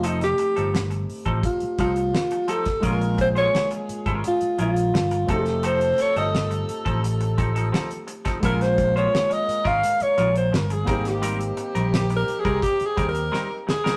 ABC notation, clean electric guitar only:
X:1
M:4/4
L:1/16
Q:1/4=86
K:Bbdor
V:1 name="Clean electric guitar"
[F,CE=A] z2 [F,CEA] z3 [F,CEA] z2 [F,CEA] z3 [F,CEA] z | [A,DFB] z2 [A,DFc] z3 [A,DFB] z2 [A,DFB] z3 [F,CE=A] z | [F,CE=A] z2 [F,CEA] z3 [F,CEA] z2 [F,CEA] [F,CEA] [F,CEA] z2 [F,CEA] | [A,DFB] z2 [A,DFc] z3 [A,DFB] z2 [A,DFB] z3 [G,CEB] z |
[G,CEB] z2 [G,CEB] z3 [G,CEB] z2 [G,CEB] z [G,CEB] z2 [G,CEB] |]